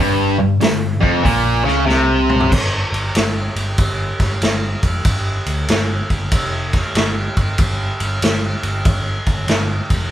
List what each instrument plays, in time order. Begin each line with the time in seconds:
Already playing: picked electric bass G1, overdriven electric guitar G2
0.40 picked electric bass G1, overdriven electric guitar G2
0.61 picked electric bass G1, overdriven electric guitar G2, snare, open hi-hat
1.01 picked electric bass F1, overdriven electric guitar F2, kick
1.23 picked electric bass A#1, overdriven electric guitar A#2, kick, open hi-hat
1.65 picked electric bass C#2, overdriven electric guitar C#3, snare
1.86 picked electric bass C2, overdriven electric guitar C3, snare
2.30 mid tom
2.40 floor tom
2.52 picked electric bass G1, kick, crash
2.92 picked electric bass G1, ride
3.15 picked electric bass G1, snare, ride
3.56 picked electric bass G1, ride
3.78 picked electric bass G1, kick, ride
4.20 picked electric bass G1, kick, snare, ride
4.42 picked electric bass G1, snare, ride
4.83 picked electric bass F1, kick, ride
5.05 picked electric bass G1, kick, ride
5.46 picked electric bass D2, ride
5.68 picked electric bass G1, snare, ride
6.10 picked electric bass G1, kick, ride
6.32 picked electric bass F1, kick, ride
6.73 kick, snare, ride
6.95 picked electric bass G1, snare, ride
7.37 picked electric bass G1, kick, ride
7.58 picked electric bass G1, kick, ride
8.00 picked electric bass G1, ride
8.22 picked electric bass G1, snare, ride
8.63 picked electric bass G1, ride
8.85 picked electric bass G1, kick, ride
9.26 picked electric bass G1, kick, ride
9.47 picked electric bass G1, snare, ride
9.90 picked electric bass F1, kick, ride